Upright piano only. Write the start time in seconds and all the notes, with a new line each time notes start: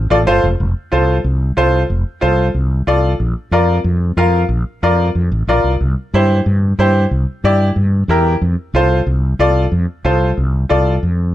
0.10 F4 A4 D5
0.27 F4 A4 C5
0.92 F4 A4 C5
1.57 F4 A4 C5
2.21 F4 A4 C5
2.87 F4 A4 D5
3.52 F4 A#4 D5
4.17 F4 A#4 F5
4.83 F4 A#4 D5
5.49 F4 A#4 D5
6.14 E4 G4 C5
6.79 E4 G4 C5
7.44 E4 G4 D5
8.09 E4 G4 A#4
8.75 F4 A4 C5
9.40 F4 A4 D5
10.05 F4 A4 C5
10.69 F4 A4 D5